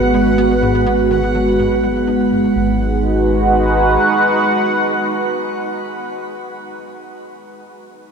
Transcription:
0.00 2.54 G#1 medium
0.00 2.54 G#3 medium
0.00 2.56 B3 medium
0.00 2.56 F#4 medium
0.00 2.56 B4 medium
0.00 2.56 F#5 medium
0.00 2.57 F#5 medium
0.14 0.30 G#3 medium
0.38 0.55 B3 medium
0.62 0.85 G#2 medium
0.86 0.96 B3 medium
1.11 1.21 D#3 medium
1.35 1.45 F#3 medium
1.59 1.69 G#2 loud
1.83 2.06 G#3 medium
2.07 2.24 D#4 medium
2.32 2.48 G#2 medium
2.55 3.97 G#1 medium
2.55 2.78 G#2 medium
2.55 6.03 G#3 medium
2.63 6.10 D#4 medium
2.70 6.18 F#4 medium
2.77 6.25 B4 medium
2.85 6.33 F#5 medium

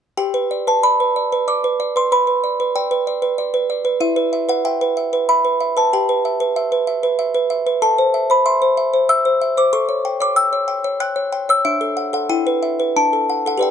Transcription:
0.17 2.07 G4 soft
0.17 0.65 G5 medium
0.34 0.60 B4 soft
0.51 0.77 D5 soft
0.67 0.93 B4 soft
0.67 0.84 A5 medium
0.83 1.09 D5 soft
0.83 1.45 B5 medium
1.00 1.26 B4 soft
1.16 1.41 D5 soft
1.32 1.58 B4 soft
1.48 1.73 D5 soft
1.48 1.94 D6 medium
1.64 1.89 B4 soft
1.80 2.05 D5 soft
1.96 2.11 B4 soft
1.96 2.12 C6 medium
2.12 2.26 B4 medium
2.12 2.73 B5 medium
2.27 2.53 B4 soft
2.44 2.69 D5 soft
2.60 2.85 B4 soft
2.76 3.01 D5 soft
2.76 3.98 G5 medium
2.91 3.16 B4 soft
3.07 3.32 D5 soft
3.22 3.48 B4 soft
3.38 3.63 D5 soft
3.54 3.79 B4 soft
3.70 3.95 D5 soft
3.85 4.01 B4 soft
4.00 5.88 E4 medium
4.00 4.32 E5 medium
4.16 4.42 B4 soft
4.33 4.59 E5 soft
4.49 4.74 B4 soft
4.49 4.65 F#5 medium
4.65 4.91 E5 soft
4.65 5.26 G5 medium
4.81 5.07 B4 soft
4.97 5.22 E5 soft
5.13 5.38 B4 soft
5.29 5.54 E5 soft
5.29 5.75 B5 medium
5.45 5.70 B4 soft
5.60 5.86 E5 soft
5.77 5.92 B4 soft
5.77 5.93 A5 medium
5.93 7.78 G4 medium
5.93 6.54 G5 medium
6.09 6.34 B4 soft
6.25 6.50 E5 soft
6.40 6.65 B4 soft
6.56 6.86 E5 medium
6.72 6.97 B4 soft
6.87 7.12 E5 soft
7.03 7.28 B4 soft
7.19 7.44 E5 medium
7.34 7.60 B4 soft
7.50 7.76 E5 medium
7.67 7.82 B4 soft
7.82 9.69 A4 medium
7.82 8.28 A5 medium
7.98 8.24 C5 soft
8.14 8.39 E5 soft
8.30 8.55 C5 soft
8.30 8.46 B5 medium
8.46 8.71 E5 medium
8.46 9.07 C6 loud
8.62 8.87 C5 soft
8.77 9.03 E5 medium
8.93 9.19 C5 soft
9.09 9.35 E5 medium
9.09 9.55 E6 medium
9.25 9.51 C5 soft
9.42 9.67 E5 medium
9.57 9.73 C5 soft
9.57 9.74 D6 medium
9.73 11.61 A4 medium
9.73 10.19 C#6 medium
9.89 10.14 C#5 soft
10.05 10.30 G5 medium
10.20 10.46 C#5 soft
10.20 10.37 D6 medium
10.36 10.62 G5 medium
10.36 10.98 E6 medium
10.53 10.78 C#5 soft
10.68 10.94 G5 medium
10.84 11.10 C#5 medium
11.00 11.26 G5 medium
11.00 11.47 F#6 loud
11.16 11.42 C#5 soft
11.32 11.58 G5 medium
11.49 11.65 C#5 medium
11.49 11.66 E6 medium
11.65 12.28 D4 medium
11.65 12.12 E5 medium
11.81 12.07 A4 soft
11.97 12.13 F#5 soft
12.13 12.30 A4 soft
12.13 12.30 F#5 medium
12.29 12.94 E4 medium
12.29 12.93 G5 medium
12.47 12.73 B4 soft
12.63 12.89 E5 soft
12.80 12.96 B4 soft
12.96 13.61 D4 medium
12.96 13.45 A5 medium
13.13 13.40 A4 soft
13.30 13.46 F#5 soft
13.46 13.63 A4 soft
13.46 13.64 F#5 medium
13.57 13.71 G4 soft
13.57 13.71 B4 soft
13.57 13.71 D5 soft
13.63 13.71 G5 medium

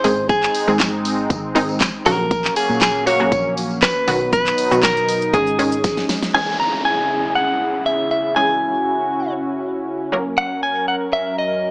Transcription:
0.00 0.55 D#3 medium
0.00 0.29 C5 medium
0.04 0.48 G#1 medium
0.04 0.55 G#3 medium
0.04 2.04 G#3 medium
0.04 2.04 C4 medium
0.04 0.55 C4 medium
0.04 2.04 D#4 medium
0.04 0.55 G#4 medium
0.04 open hi-hat medium
0.04 tambourine medium
0.29 0.76 G#4 medium
0.29 kick loud
0.29 closed hi-hat medium
0.29 tambourine soft
0.43 clap medium
0.43 tambourine soft
0.54 open hi-hat medium
0.54 tambourine medium
0.68 1.32 G#2 medium
0.68 1.08 D#3 medium
0.68 1.08 G#3 medium
0.68 1.08 C4 medium
0.68 1.09 G#4 medium
0.68 tambourine soft
0.80 kick loud
0.80 snare loud
0.80 clap loud
0.80 closed hi-hat medium
0.80 tambourine medium
1.05 open hi-hat medium
1.05 tambourine medium
1.30 1.82 G#1 loud
1.30 kick loud
1.30 closed hi-hat medium
1.30 tambourine soft
1.55 1.91 D#3 medium
1.55 1.91 G#3 medium
1.55 1.91 C4 medium
1.55 1.91 D#4 loud
1.55 open hi-hat medium
1.55 tambourine soft
1.69 tambourine soft
1.81 kick loud
1.81 snare medium
1.81 clap loud
1.81 closed hi-hat medium
1.81 tambourine medium
2.06 2.49 A#1 loud
2.06 2.87 C#3 medium
2.06 2.87 F#3 medium
2.06 4.06 F#3 medium
2.06 2.87 A#3 medium
2.06 4.06 A#3 medium
2.06 4.06 C#4 medium
2.06 2.87 F#4 medium
2.06 2.56 A#4 medium
2.06 open hi-hat medium
2.06 tambourine medium
2.31 kick loud
2.31 closed hi-hat medium
2.31 tambourine soft
2.44 clap medium
2.44 tambourine soft
2.56 2.80 G#4 medium
2.56 open hi-hat medium
2.56 tambourine medium
2.69 3.33 A#2 loud
2.69 tambourine soft
2.81 3.06 G#4 loud
2.81 kick loud
2.81 snare loud
2.81 clap loud
2.81 closed hi-hat medium
2.81 tambourine medium
3.06 3.13 A#3 medium
3.06 3.13 F#4 medium
3.06 3.54 C#5 loud
3.06 open hi-hat medium
3.06 tambourine medium
3.20 3.67 C#3 medium
3.20 3.67 F#3 medium
3.20 3.67 A#3 medium
3.20 3.67 F#4 medium
3.32 3.84 A#1 loud
3.32 kick loud
3.32 closed hi-hat medium
3.32 tambourine soft
3.57 open hi-hat medium
3.57 tambourine medium
3.71 tambourine soft
3.82 4.32 B4 loud
3.82 kick loud
3.82 snare medium
3.82 clap loud
3.82 closed hi-hat medium
3.82 tambourine medium
4.07 4.51 B1 loud
4.07 4.58 D#3 medium
4.07 4.58 F#3 medium
4.07 5.33 F#3 medium
4.07 4.58 B3 medium
4.07 5.33 B3 medium
4.07 6.32 D#4 medium
4.07 4.58 F#4 medium
4.07 open hi-hat medium
4.07 tambourine medium
4.33 4.83 B4 loud
4.33 kick loud
4.33 closed hi-hat medium
4.33 tambourine soft
4.33 shaker medium
4.46 clap medium
4.46 tambourine soft
4.46 shaker medium
4.58 open hi-hat medium
4.58 tambourine medium
4.58 shaker medium
4.71 5.35 B2 medium
4.71 5.12 D#3 medium
4.71 5.12 F#3 medium
4.71 5.12 B3 medium
4.71 5.12 F#4 medium
4.71 tambourine soft
4.71 shaker medium
4.83 5.35 A#4 loud
4.83 kick loud
4.83 snare medium
4.83 clap loud
4.83 closed hi-hat medium
4.83 tambourine medium
4.83 shaker medium
4.97 tambourine soft
4.97 shaker soft
5.09 open hi-hat medium
5.09 tambourine medium
5.09 shaker medium
5.22 shaker medium
5.33 6.03 G#1 loud
5.33 5.54 D#3 medium
5.33 5.54 G#3 medium
5.33 6.34 G#3 medium
5.33 6.33 C#4 medium
5.33 5.54 C#4 medium
5.33 6.05 G#4 medium
5.33 5.54 G#4 medium
5.33 kick loud
5.33 closed hi-hat medium
5.33 tambourine soft
5.33 shaker medium
5.47 shaker soft
5.59 5.95 D#3 medium
5.59 5.95 G#3 medium
5.59 5.95 C#4 medium
5.59 5.95 G#4 medium
5.59 open hi-hat medium
5.59 tambourine soft
5.59 shaker soft
5.72 shaker medium
5.84 kick loud
5.84 snare medium
5.84 closed hi-hat medium
5.84 tambourine medium
5.84 shaker medium
5.97 snare medium
5.97 shaker medium
6.09 snare medium
6.09 open hi-hat medium
6.09 tambourine medium
6.09 shaker medium
6.23 snare medium
6.23 shaker medium
6.34 10.09 C#3 medium
6.34 8.32 E3 medium
6.34 8.32 G#3 medium
6.34 11.71 C#4 medium
6.34 8.32 C#4 medium
6.34 10.09 E4 medium
6.34 8.34 G#4 medium
6.34 8.33 G#4 medium
6.34 6.59 G#5 medium
6.34 downlifter medium
6.60 6.85 A#5 medium
6.85 7.35 G#5 medium
7.35 7.86 F#5 medium
7.86 8.10 E5 medium
8.11 8.36 E5 medium
8.36 10.09 E3 medium
8.36 10.09 G#3 medium
8.36 10.09 C#4 medium
8.36 10.11 F#4 medium
8.36 10.10 G#4 medium
8.36 9.33 G#5 medium
10.12 11.71 F#2 medium
10.12 11.71 F#3 medium
10.12 11.71 A#3 medium
10.12 11.71 C#4 medium
10.12 11.71 A#4 medium
10.38 10.63 F#5 loud
10.63 10.88 G#5 loud
10.88 10.95 F#5 medium
11.13 11.38 E5 medium
11.38 11.71 D#5 medium

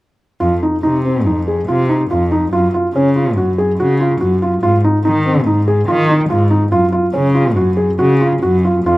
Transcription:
0.40 0.58 F2 medium
0.40 0.53 F4 medium
0.63 0.75 D#4 soft
0.83 1.28 C3 medium
0.83 0.96 D#4 medium
1.05 1.17 C4 soft
1.26 1.60 F2 medium
1.26 1.39 D#4 soft
1.48 1.60 G#4 soft
1.68 2.01 C3 medium
1.68 1.81 F4 medium
1.89 2.02 D#4 soft
2.11 2.44 F2 medium
2.11 2.23 F4 medium
2.32 2.44 D#4 medium
2.52 2.69 F#2 medium
2.52 2.65 F4 medium
2.74 2.87 F4 medium
2.94 3.38 C#3 medium
2.94 3.08 C#4 medium
3.16 3.28 F4 soft
3.37 3.70 F#2 medium
3.37 3.50 F#4 medium
3.58 3.71 G#4 medium
3.79 4.12 C#3 medium
3.79 3.92 F#4 medium
4.00 4.13 F4 soft
4.21 4.54 F#2 medium
4.21 4.33 F#4 medium
4.42 4.55 F4 medium
4.62 4.79 G#2 medium
4.62 4.75 F4 medium
4.84 4.97 D#4 medium
5.05 5.48 D#3 medium
5.05 5.17 D#4 medium
5.26 5.38 C4 medium
5.47 5.79 G#2 medium
5.47 5.59 D#4 medium
5.68 5.80 G#4 medium
5.88 6.21 D#3 medium
5.88 6.00 F4 medium
6.10 6.22 D#4 soft
6.30 6.63 G#2 medium
6.30 6.42 F4 medium
6.51 6.63 D#4 medium
6.72 6.88 F#2 medium
6.72 6.84 F4 medium
6.92 7.05 F4 medium
7.13 7.58 C#3 medium
7.13 7.26 C#4 medium
7.35 7.47 F4 medium
7.56 7.90 F#2 medium
7.56 7.69 F#4 medium
7.77 7.90 G#4 medium
7.99 8.33 C#3 medium
7.99 8.11 F#4 medium
8.21 8.33 F4 soft
8.42 8.77 F#2 medium
8.42 8.55 F#4 medium
8.65 8.77 F4 medium
8.85 8.98 F2 medium
8.85 8.98 F4 medium

